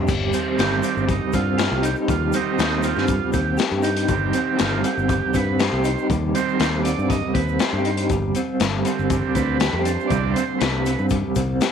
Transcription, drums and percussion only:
0.08 kick, closed hi-hat, crash, shaker
0.33 closed hi-hat, shaker
0.59 snare, closed hi-hat, shaker
0.83 closed hi-hat, shaker
0.97 shaker
1.09 kick, closed hi-hat, shaker
1.33 kick, closed hi-hat, shaker
1.58 snare, closed hi-hat, shaker
1.83 closed hi-hat, shaker
1.96 shaker
2.08 kick, closed hi-hat, shaker
2.33 closed hi-hat, shaker
2.59 snare, closed hi-hat, shaker
2.83 closed hi-hat, shaker
2.96 snare, shaker
3.08 kick, closed hi-hat, shaker
3.33 kick, closed hi-hat, shaker
3.57 snare, closed hi-hat, shaker
3.83 closed hi-hat, shaker
3.97 closed hi-hat
4.08 kick, closed hi-hat, shaker
4.33 closed hi-hat, shaker
4.59 snare, closed hi-hat, shaker
4.84 closed hi-hat, shaker
4.98 shaker
5.09 kick, closed hi-hat, shaker
5.34 kick, closed hi-hat, shaker
5.59 snare, closed hi-hat, shaker
5.84 closed hi-hat, shaker
5.98 shaker
6.10 kick, closed hi-hat, shaker
6.35 closed hi-hat, shaker
6.49 shaker
6.60 snare, closed hi-hat, shaker
6.85 closed hi-hat, shaker
6.99 shaker
7.10 kick, closed hi-hat, shaker
7.35 kick, closed hi-hat
7.48 shaker
7.59 snare, closed hi-hat, shaker
7.85 closed hi-hat
7.97 closed hi-hat, shaker
8.09 kick, closed hi-hat, shaker
8.35 closed hi-hat, shaker
8.60 snare, closed hi-hat, shaker
8.85 closed hi-hat, shaker
8.99 shaker
9.10 kick, closed hi-hat, shaker
9.35 kick, closed hi-hat, shaker
9.60 snare, closed hi-hat, shaker
9.85 closed hi-hat, shaker
10.00 shaker
10.10 kick, closed hi-hat, shaker
10.36 closed hi-hat, shaker
10.61 snare, closed hi-hat, shaker
10.86 closed hi-hat, shaker
10.98 shaker
11.10 kick, closed hi-hat, shaker
11.36 kick, closed hi-hat, shaker
11.61 snare, closed hi-hat, shaker

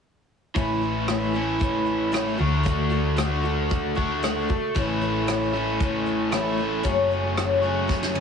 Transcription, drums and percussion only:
0.56 kick, closed hi-hat
1.08 cross-stick, closed hi-hat
1.61 kick, closed hi-hat
2.14 cross-stick, closed hi-hat
2.66 kick, closed hi-hat
3.18 cross-stick, closed hi-hat
3.71 kick, closed hi-hat
3.97 kick
4.24 cross-stick, closed hi-hat
4.50 kick
4.75 kick, closed hi-hat
5.28 cross-stick, closed hi-hat
5.80 kick, closed hi-hat
6.32 cross-stick, closed hi-hat
6.85 kick, closed hi-hat
7.37 cross-stick, closed hi-hat
7.89 kick, snare
8.03 snare
8.15 high tom

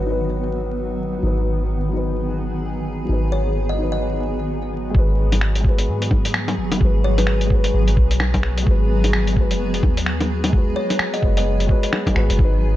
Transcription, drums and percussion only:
4.95 kick
5.32 closed hi-hat, low bongo
5.41 finger snap
5.55 closed hi-hat
5.64 kick
5.78 closed hi-hat
6.02 closed hi-hat
6.11 kick, low bongo
6.25 closed hi-hat
6.34 finger snap
6.48 closed hi-hat, low bongo
6.72 closed hi-hat, low bongo
6.81 kick
7.18 closed hi-hat, low bongo
7.27 finger snap
7.41 closed hi-hat
7.50 kick
7.64 closed hi-hat
7.88 closed hi-hat
7.97 kick
8.11 closed hi-hat
8.20 finger snap, low bongo
8.34 kick, closed hi-hat, low bongo
8.43 finger snap
8.57 closed hi-hat
8.67 kick
9.04 closed hi-hat, low bongo
9.13 finger snap
9.27 closed hi-hat
9.36 kick
9.51 closed hi-hat
9.74 closed hi-hat
9.83 kick, low bongo
9.97 closed hi-hat
10.06 finger snap
10.21 closed hi-hat, low bongo
10.44 closed hi-hat, low bongo
10.53 kick
10.90 closed hi-hat, low bongo
10.99 finger snap
11.14 closed hi-hat
11.23 kick
11.37 closed hi-hat
11.60 closed hi-hat
11.69 kick
11.83 closed hi-hat
11.93 finger snap, low bongo
12.06 kick, closed hi-hat, low bongo
12.16 finger snap
12.30 closed hi-hat
12.39 kick

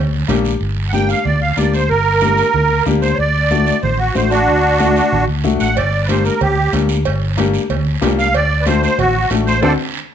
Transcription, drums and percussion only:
0.29 cowbell, high conga, low conga, short guiro
0.45 short guiro
0.61 high conga, long guiro
0.93 high conga, short guiro
1.09 short guiro
1.25 high conga, low conga, long guiro
1.58 high conga, short guiro
1.74 short guiro
1.89 high conga, long guiro
2.21 high conga, short guiro
2.37 short guiro
2.54 high conga, low conga, long guiro
2.86 high conga, low conga, short guiro
3.02 short guiro
3.18 high conga, long guiro
3.50 high conga, short guiro
3.67 short guiro
3.83 high conga, low conga, long guiro
4.15 high conga, short guiro
4.31 short guiro
4.48 high conga, long guiro
4.80 high conga, short guiro
4.96 short guiro
5.12 high conga, low conga, long guiro
5.44 high conga, short guiro
5.60 short guiro
5.76 cowbell, high conga, long guiro
6.08 cowbell, high conga, short guiro
6.25 short guiro
6.41 cowbell, high conga, low conga, long guiro
6.73 cowbell, high conga, short guiro
6.89 short guiro
7.05 cowbell, high conga, long guiro
7.37 cowbell, high conga, short guiro
7.54 short guiro
7.70 cowbell, high conga, low conga, long guiro
8.02 cowbell, high conga, low timbale, short guiro
8.19 short guiro
8.34 cowbell, high conga, long guiro
8.67 cowbell, high conga, short guiro
8.83 short guiro
8.99 cowbell, high conga, low conga, long guiro
9.31 cowbell, high conga, short guiro
9.47 short guiro
9.62 low conga, high timbale, long guiro

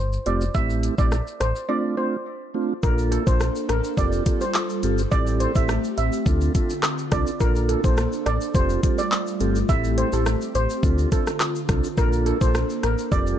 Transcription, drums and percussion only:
0.13 shaker
0.26 closed hi-hat, shaker
0.41 shaker
0.55 kick, shaker
0.70 shaker
0.83 closed hi-hat, shaker
0.98 kick, shaker
1.12 cross-stick, shaker
1.27 shaker
1.41 cross-stick, closed hi-hat, shaker
1.56 shaker
2.83 kick, shaker
2.98 shaker
3.12 closed hi-hat, shaker
3.27 kick, shaker
3.40 cross-stick, shaker
3.55 shaker
3.69 cross-stick, closed hi-hat, shaker
3.84 shaker
3.97 kick, shaker
4.12 shaker
4.26 kick, closed hi-hat, shaker
4.41 shaker
4.54 clap, shaker
4.70 shaker
4.83 closed hi-hat, shaker
4.98 shaker
5.12 kick, shaker
5.27 shaker
5.40 closed hi-hat, shaker
5.55 kick, shaker
5.69 cross-stick, shaker
5.84 shaker
5.98 closed hi-hat, shaker
6.12 shaker
6.26 kick, shaker
6.41 shaker
6.55 kick, closed hi-hat, shaker
6.70 shaker
6.83 cross-stick, clap, shaker
6.98 shaker
7.12 kick, cross-stick, closed hi-hat, shaker
7.27 shaker
7.40 kick, shaker
7.56 shaker
7.69 closed hi-hat, shaker
7.84 kick, shaker
7.97 cross-stick, shaker
8.12 shaker
8.26 cross-stick, closed hi-hat, shaker
8.41 shaker
8.54 kick, shaker
8.70 shaker
8.83 kick, closed hi-hat, shaker
8.98 shaker
9.12 clap, shaker
9.27 shaker
9.40 closed hi-hat, shaker
9.55 shaker
9.69 kick, shaker
9.84 shaker
9.98 closed hi-hat, shaker
10.13 shaker
10.26 cross-stick, shaker
10.41 shaker
10.55 closed hi-hat, shaker
10.70 shaker
10.83 kick, shaker
10.98 shaker
11.12 kick, closed hi-hat, shaker
11.27 cross-stick, shaker
11.40 cross-stick, clap, shaker
11.55 shaker
11.69 kick, cross-stick, closed hi-hat, shaker
11.84 shaker
11.98 kick, shaker
12.13 shaker
12.26 closed hi-hat, shaker
12.41 kick, shaker
12.55 cross-stick, shaker
12.70 shaker
12.83 cross-stick, closed hi-hat, shaker
12.98 shaker
13.12 kick, shaker
13.27 shaker

